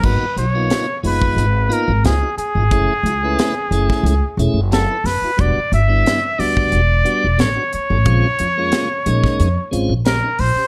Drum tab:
CC |x---------------|----------------|----------------|----------------|
HH |--x-x-o-x-x-x-x-|x-x-x-x-x-x-x-o-|x-x-x-o-x-x-x-x-|x-x-x-x-x-x-x-o-|
SD |----o-------o---|----o--o----o-o-|----o-------o---|----o--o----o---|
BD |o------o--------|o------o--------|o------o--------|o------o--------|